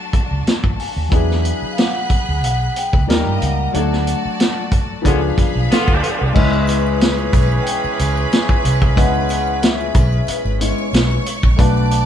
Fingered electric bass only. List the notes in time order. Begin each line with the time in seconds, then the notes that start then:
0.13 muted fingered electric bass stroke
0.31 C#2
0.47 muted fingered electric bass stroke
0.64 A1
0.96 D#2
1.12 E2
1.62 muted fingered electric bass stroke
2.10 muted fingered electric bass stroke
2.29 D2
2.44 B1
2.93 C#2
3.09 D#2
3.27 G2
3.42 C#2
3.74 D2
4.25 muted fingered electric bass stroke
5.05 C#2
5.38 muted fingered electric bass stroke
5.55 B1
5.88 D2
6.21 C2
6.36 C#2
7.33 B1
7.84 muted fingered electric bass stroke
8.00 C#2
8.65 C2
8.97 C#2
9.95 B1
10.28 muted fingered electric bass stroke
10.45 G#1
10.93 B1
11.43 A#1
11.59 B1